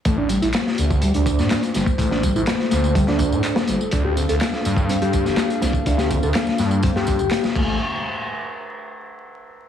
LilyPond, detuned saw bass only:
\new Staff \with { instrumentName = "Detuned saw bass" } { \clef bass \time 4/4 \key a \minor \tempo 4 = 124 a,,8. a,,16 r8 d,8. d,8 a,16 r8 g,,16 r16 | a,,8. a,,16 r8 d,8. d,8 a,16 r8 g,,16 r16 | d,8. d,16 r8 g,8. g,8 d,,16 r8 c,16 r16 | d,8. d,16 r8 g,8. g,8 d,,16 r8 a,,8 |
r1 | }